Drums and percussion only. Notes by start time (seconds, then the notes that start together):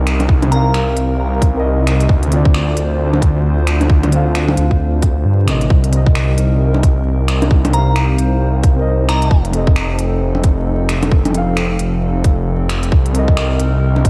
0.07 finger snap, closed hi-hat
0.20 closed hi-hat, low bongo
0.29 kick
0.43 closed hi-hat, low bongo
0.52 closed hi-hat
0.74 finger snap, closed hi-hat
0.97 closed hi-hat
1.42 kick, closed hi-hat
1.87 finger snap, closed hi-hat
2.00 closed hi-hat
2.09 kick
2.23 closed hi-hat
2.32 closed hi-hat
2.45 kick
2.54 finger snap
2.77 closed hi-hat
3.13 low bongo
3.22 kick, closed hi-hat
3.67 finger snap, closed hi-hat
3.81 closed hi-hat, low bongo
3.90 kick
4.03 closed hi-hat, low bongo
4.12 closed hi-hat
4.35 finger snap, closed hi-hat
4.49 low bongo
4.57 closed hi-hat
4.71 kick
5.02 kick, closed hi-hat
5.48 finger snap, closed hi-hat
5.61 closed hi-hat
5.70 kick
5.84 closed hi-hat
5.93 closed hi-hat
6.07 kick
6.15 finger snap
6.38 closed hi-hat
6.74 low bongo
6.83 kick, closed hi-hat
7.28 finger snap, closed hi-hat
7.42 closed hi-hat, low bongo
7.51 kick
7.65 closed hi-hat, low bongo
7.73 closed hi-hat
7.96 finger snap, closed hi-hat
8.19 closed hi-hat
8.63 kick, closed hi-hat
9.09 finger snap, closed hi-hat
9.22 closed hi-hat
9.31 kick
9.45 closed hi-hat
9.53 closed hi-hat
9.67 kick
9.76 finger snap
9.99 closed hi-hat
10.35 low bongo
10.44 kick, closed hi-hat
10.89 finger snap, closed hi-hat
11.03 closed hi-hat, low bongo
11.12 kick
11.25 closed hi-hat, low bongo
11.35 closed hi-hat
11.57 finger snap, closed hi-hat
11.79 closed hi-hat
12.24 kick, closed hi-hat
12.69 finger snap, closed hi-hat
12.83 closed hi-hat
12.92 kick
13.06 closed hi-hat
13.15 closed hi-hat
13.28 kick
13.37 finger snap
13.60 closed hi-hat
13.96 low bongo
14.05 kick, closed hi-hat